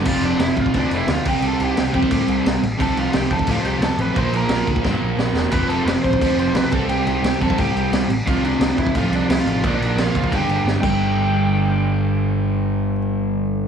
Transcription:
<<
  \new Staff \with { instrumentName = "Lead electric guitar" } { \time 4/4 \key f \lydian \tempo 4 = 176 << { f''8 d''8 e''8 f''8 d''8 e''8 f''8 g''8 | a''8 g''4 r2 r8 | a''8 f''8 g''8 a''8 f''8 g''8 a''8 b''8 | c'''8 bes''4 r2 r8 |
b''8 a''8 b''8 c'''4 c'''8 b''8 a''8 | g''8 g''4 a''8 g''4. r8 | f''8 d''4 e''16. e''32 f''8 d''8 e''16 f''8. | d''16 d''8. f''8 f''8 g''4 r8 g''8~ |
g''1~ | g''1 | } \\ { f'8 d'8 e'8 f'8 d'8 e'8 f'8 g'8 | a'8 g'4 r2 r8 | a'8 f'8 g'8 a'8 f'8 g'8 a'8 b'8 | c''8 bes'4 r2 r8 |
b'8 a'8 b'8 c''4 c''8 b'8 a'8 | g'8 g'4 a'8 g'4. r8 | f'8 d'4 e'8 f'8 d'8 e'16 f'8. | d'16 d'8. f'8 f'8 g'4 r4 |
r1 | r1 | } >> }
  \new Staff \with { instrumentName = "Overdriven electric guitar" } { \clef bass \time 4/4 \key f \lydian <f, c f>2 <f, c f>4. <c g c'>8~ | <c g c'>4. <c g c'>2 r8 | <f, c f>2 <f, c f>2 | <bes, f bes>2 <bes, f bes>2 |
<f, c f>2 <f, c f>4. <c g c'>8~ | <c g c'>4. <c g c'>2 r8 | <f, c f>2 <f, c f>2 | <bes, f bes>2 <g, d g>4. <g, d g>8~ |
<g, d g>1~ | <g, d g>1 | }
  \new Staff \with { instrumentName = "Picked electric bass" } { \clef bass \time 4/4 \key f \lydian f,,8 f,,8 f,,8 a,,8 d,8 f,,8 d,8 c,8 | c,8 c,8 c,8 f,8 a,8 c,8 c,8 a,,8 | c,8 c,8 c,8 f,8 a,8 c,8 c,8 a,,8 | bes,,8 bes,,8 bes,,8 d,8 g,8 bes,,8 bes,,8 e,,8 |
f,,8 f,,8 f,,8 a,,8 d,8 f,,8 b,,8 c,8 | c,8 c,8 c,8 f,8 a,8 c,8 c,8 a,,8 | c,8 c,8 c,8 f,8 a,8 c,8 c,8 a,,8 | bes,,8 bes,,8 bes,,8 fis,,8 g,,8 g,,8 g,,8 g,,8~ |
g,,1~ | g,,1 | }
  \new DrumStaff \with { instrumentName = "Drums" } \drummode { \time 4/4 <cymc bd>8 cymc8 <cymc sn>8 <cymc bd>16 bd16 <cymc bd>8 cymc8 <cymc sn>8 <cymc bd>8 | cymc8 cymc8 <cymc sn>8 <cymc bd>16 bd16 <cymc bd>8 cymc8 <cymc sn>8 cymc8 | <cymc bd>8 cymc8 <cymc sn>8 <cymc bd>16 bd16 <cymc bd>8 cymc8 <cymc sn>8 cymc8 | <cymc bd>8 cymc8 <cymc sn>8 <cymc bd>16 bd16 <bd sn>4 sn8 sn8 |
<cymc bd>8 cymc8 <cymc sn>8 <cymc bd>16 bd16 <cymc bd>8 cymc8 <cymc sn>8 <cymc bd>8 | cymc8 cymc8 <cymc sn>8 <cymc bd>16 bd16 <cymc bd>8 cymc8 <cymc sn>8 cymc8 | <cymc bd>8 cymc8 <cymc sn>8 <cymc bd>16 bd16 <cymc bd>8 cymc8 <cymc sn>8 cymc8 | <cymc bd>8 cymc8 <cymc sn>8 <cymc bd>16 bd16 <cymc bd>8 cymc8 sn8 <cymc bd>8 |
r4 r4 r4 r4 | r4 r4 r4 r4 | }
>>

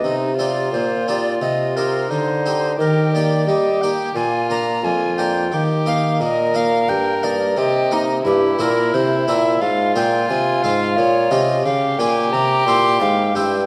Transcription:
<<
  \new Staff \with { instrumentName = "Recorder" } { \time 4/4 \key ees \major \tempo 4 = 88 ees''8 d''8 c''8 d''8 ees''8 bes'8 c''4 | bes'8 d''8 ees''8 g''8 aes''8 bes''8 aes''8 g''8~ | g''8 f''8 ees''8 f''8 g''8 d''8 ees''8 r8 | \key c \phrygian g'8 bes'8 c''8 e''8 f''8 g''8 aes''8 f''8 |
des''8 ees''8 f''8 aes''8 bes''8 c'''8 f''8 g''8 | }
  \new Staff \with { instrumentName = "Violin" } { \time 4/4 \key ees \major ees'8 f'2~ f'8 ees'4 | g'4 g'4 f'4 f'4 | g'4 bes'2 g'8 ees'8 | \key c \phrygian e'2 f'2~ |
f'4 g'2. | }
  \new Staff \with { instrumentName = "Harpsichord" } { \time 4/4 \key ees \major r8 <c' ees' g'>4 <c' ees' g'>8 r8 <c' ees' g'>4 <c' ees' g'>8 | r8 <bes ees' g'>4 <bes ees' g'>8 r8 <bes d' bes'>4 <bes d' bes'>8 | r8 <bes ees' bes'>4 <bes ees' bes'>8 r8 <bes ees' bes'>4 <bes ees' bes'>8 | \key c \phrygian r8 <c' e' bes'>4 <c' e' bes'>8 r8 <c' f' aes'>4 <c' f' aes'>8 |
r8 <des' f' g'>4 <des' f' g'>8 r8 <c' e' g'>4 <c' e' g'>8 | }
  \new Staff \with { instrumentName = "Harpsichord" } { \clef bass \time 4/4 \key ees \major c4 bes,4 c4 d4 | ees4 g8 r8 bes,4 f,4 | ees4 bes,4 g,4 c4 | \key c \phrygian g,8 bes,8 c8 bes,8 aes,8 bes,8 c8 aes,8 |
bes,8 c8 des8 bes,8 c8 bes,8 aes,8 g,8 | }
  \new Staff \with { instrumentName = "Bassoon" } { \clef bass \time 4/4 \key ees \major c4 bes,4 c4 d4 | ees4 g8 r8 bes,4 f,4 | ees4 bes,4 g,4 c4 | \key c \phrygian g,8 bes,8 c8 bes,8 aes,8 bes,8 c8 aes,8 |
bes,8 c8 des8 bes,8 c8 bes,8 aes,8 g,8 | }
>>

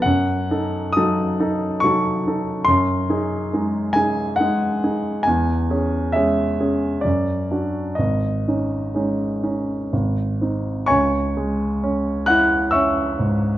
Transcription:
\new Staff \with { instrumentName = "Grand piano" } { \time 3/4 \key cis \minor \tempo 4 = 67 << { fis''4 dis'''4 cis'''4 | bis''4. gis''8 fis''4 | gis''4 e''4 d''4 | dis''2~ dis''8 r8 |
<cis'' gis'' cis'''>4. <fis'' fis'''>8 <e'' cis''' e'''>4 | } \\ { fis,8 <dis' a'>8 <fis dis' a'>8 <dis' a'>8 <fis dis' a'>8 <dis' a'>8 | fis,8 <dis' gis'>8 <gis dis' gis'>8 <dis' gis'>8 <gis dis' gis'>8 <dis' gis'>8 | e,8 <cis' gis'>8 <gis cis' gis'>8 <cis' gis'>8 fis,8 <d' fis'>8 | gis,,8 <cis' dis'>8 <gis cis' dis'>8 <cis' dis'>8 gis,,8 <bis dis'>8 |
cis,8 gis8 cis'8 e'8 cis'8 gis,8 | } >> }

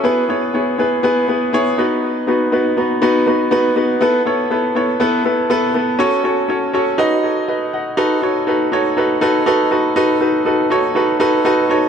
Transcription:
\new Staff \with { instrumentName = "Grand piano" } { \time 4/4 \key b \mixolydian \tempo 4 = 121 << { r1 | r1 | r1 | r2 r8 <a' cis''>8 <b' dis''>8 <dis'' fis''>8~ |
<dis'' fis''>8 r2. r8 | r1 | } \\ { <b e' gis' b'>8 <b e' gis' cis''>8 <b e' gis' cis''>8 <b e' gis' b'>8 <b e' gis' b'>8 <b e' gis' b'>8 <b e' gis' cis''>8 <b dis' fis' b'>8~ | <b dis' fis' b'>8 <b dis' fis' b'>8 <b dis' fis' b'>8 <b dis' fis' b'>8 <b dis' fis' b'>8 <b dis' fis' b'>8 <b dis' fis' b'>8 <b dis' fis' b'>8 | <b e' a' b'>8 <b e' a' cis''>8 <b e' a' b'>8 <b e' a' cis''>8 <b e' a' b'>8 <b e' a' b'>8 <b e' a' b'>8 <b e' a' b'>8 | <cis' fis' a' cis''>8 <cis' fis' a' cis''>8 <cis' fis' a' cis''>8 <cis' fis' a' cis''>8 <dis' fis' b' dis''>8 r4. |
<dis' fis' a' b'>8 <dis' fis' a' cis''>8 <dis' fis' a' b'>8 <dis' fis' a' cis''>8 <dis' fis' a' b'>8 <dis' fis' a' b'>8 <dis' fis' a' b'>8 <dis' fis' a' b'>8 | <dis' fis' a' b'>8 <dis' fis' a' b'>8 <dis' fis' a' b'>8 <dis' fis' a' cis''>8 <dis' fis' a' b'>8 <dis' fis' a' b'>8 <dis' fis' a' b'>8 <dis' fis' a' cis''>8 | } >> }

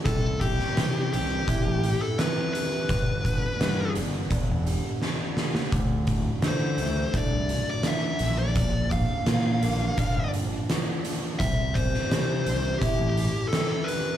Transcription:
<<
  \new Staff \with { instrumentName = "Lead electric guitar" } { \time 4/4 \key c \lydian \tempo 4 = 85 a'8 g'4 g'4~ g'16 a'16 b'8 b'8~ | b'4. r2 r8 | r4 c''4 d''8. d''16 e''8. d''16~ | d''8 f''2 r4. |
e''8 c''4. g'4 a'8 b'8 | }
  \new Staff \with { instrumentName = "Clean electric guitar" } { \clef bass \time 4/4 \key c \lydian c8 g8 c8 c'8 e'8 g8 c8 g8 | g,8 d8 d8 b8 d'8 g8 d8 g8 | d8 fis8 d8 a8 d'8 fis8 d8 bes,8 | bes,8 d8 d8 bes8 d'8 f8 d8 f8 |
c8 g8 c8 c'8 e'8 g8 c8 g8 | }
  \new Staff \with { instrumentName = "Fingered electric bass" } { \clef bass \time 4/4 \key c \lydian c,4 c8 c,8 r16 a,,8 r4 r16 | g,,4 g,8 g,,8 r16 e,,8 r4 r16 | d,4 d8 d,8 r16 c,8 r8. bes,,8~ | bes,,4 bes,8 bes,,8 r16 g,,8 r4 r16 |
c,4 c8 c,8 r16 a,,8 r4 r16 | }
  \new DrumStaff \with { instrumentName = "Drums" } \drummode { \time 4/4 <hh bd>8 <hh bd>16 sn16 <hh sn>8 hh8 <hh bd>8 hh8 <hh sn>8 hh8 | <hh bd>8 <hh bd>8 <hh sn>8 hh8 <hh bd>8 hh8 sn8 sn16 sn16 | <hh bd>8 <hh bd>8 <hh sn>8 hh8 <hh bd>8 hh8 <hh sn>8 hh8 | <hh bd>8 <hh bd>8 <hh sn>8 hh8 <hh bd>8 hh8 <hh sn>8 hh8 |
<hh bd>8 <hh bd>16 sn16 <hh sn>8 hh8 <hh bd>8 hh8 <hh sn>8 hh8 | }
>>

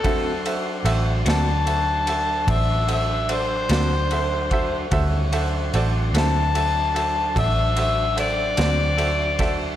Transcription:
<<
  \new Staff \with { instrumentName = "Harmonica" } { \time 12/8 \key d \dorian \tempo 4. = 49 a'8 r4 a''4. e''8 e''8 c''2 | r4. a''4. e''8 e''8 d''2 | }
  \new Staff \with { instrumentName = "Upright piano" } { \time 12/8 \key d \dorian <fis' a' c'' e''>8 <fis' a' c'' e''>8 <fis' a' c'' e''>8 <fis' a' c'' d''>8 <fis' a' c'' e''>8 <fis' a' c'' e''>8 <fis' a' c'' d''>8 <fis' a' c'' e''>8 <fis' a' c'' d''>8 <fis' a' c'' d''>8 <fis' a' c'' e''>8 <fis' a' c'' e''>8 | <fis' a' c'' e''>8 <fis' a' c'' e''>8 <fis' a' c'' d''>8 <fis' a' c'' e''>8 <fis' a' c'' e''>8 <fis' a' c'' e''>8 <fis' a' c'' d''>8 <fis' a' c'' e''>8 <fis' a' c'' e''>8 <fis' a' c'' d''>8 <fis' a' c'' e''>8 <fis' a' c'' e''>8 | }
  \new Staff \with { instrumentName = "Tonewheel organ" } { \time 12/8 \key d \dorian <fis d' c''>1. | <ees g cis'>8 <fis d' c''>1~ <fis d' c''>4. | }
  \new Staff \with { instrumentName = "Clean electric guitar" } { \time 12/8 \key d \dorian <d a c' fis'>8 r4 <d a c' fis'>8 r2 r8 <d a c' fis'>8 r4 | r4. <d a c' fis'>8 r2 r8 <d a c' fis'>8 r4 | }
  \new Staff \with { instrumentName = "Fingered electric bass" } { \clef bass \time 12/8 \key d \dorian d,4 a,,8 d,4. a,,4. d,4. | d,4 a,,8 d,4. a,,4. d,4. | }
  \new DrumStaff \with { instrumentName = "Drums" } \drummode { \time 12/8 <bd cymr>8 cymr8 cymr8 <cymr sn>8 cymr8 cymr8 <bd cymr>8 cymr8 cymr8 <cymr sn>8 cymr8 <bd cymr>8 | <bd cymr>8 cymr8 cymr8 <cymr sn>8 cymr8 cymr8 <bd cymr>8 cymr8 cymr8 <cymr sn>8 cymr8 <bd cymr sn>8 | }
>>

